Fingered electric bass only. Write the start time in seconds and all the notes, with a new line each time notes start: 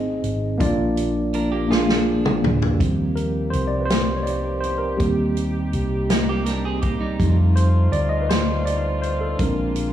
Already playing: G#1
0.24 G#1
0.60 A#1
2.43 D2
2.81 D#2
3.53 C2
5.00 D#2
5.73 C2
7.20 F2
7.91 D2
9.39 A#1